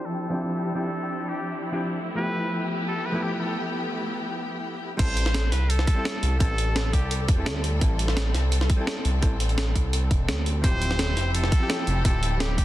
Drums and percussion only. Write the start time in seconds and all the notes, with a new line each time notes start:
4.99 kick, closed hi-hat, crash
5.17 closed hi-hat
5.26 snare
5.34 snare, closed hi-hat
5.52 snare, closed hi-hat
5.70 closed hi-hat
5.79 snare
5.87 kick, closed hi-hat
6.05 snare, closed hi-hat
6.23 closed hi-hat
6.40 kick, closed hi-hat
6.58 closed hi-hat
6.76 snare, closed hi-hat
6.93 kick, closed hi-hat
7.11 closed hi-hat
7.28 kick, closed hi-hat
7.46 snare, closed hi-hat
7.64 closed hi-hat
7.81 kick, closed hi-hat
7.99 closed hi-hat
8.08 snare
8.17 snare, closed hi-hat
8.35 snare, closed hi-hat
8.52 closed hi-hat
8.61 snare
8.70 kick, closed hi-hat
8.87 snare, closed hi-hat
9.05 closed hi-hat
9.22 kick, closed hi-hat
9.40 closed hi-hat
9.49 closed hi-hat
9.58 snare, closed hi-hat
9.76 kick, closed hi-hat
9.93 closed hi-hat
10.11 kick, closed hi-hat
10.29 snare, closed hi-hat
10.46 closed hi-hat
10.64 kick, closed hi-hat
10.82 closed hi-hat
10.91 snare
10.99 snare, closed hi-hat
11.17 snare, closed hi-hat
11.35 closed hi-hat
11.44 snare
11.52 kick, closed hi-hat
11.70 snare, closed hi-hat
11.87 closed hi-hat
12.05 kick, closed hi-hat
12.23 closed hi-hat
12.40 snare, closed hi-hat
12.58 kick, closed hi-hat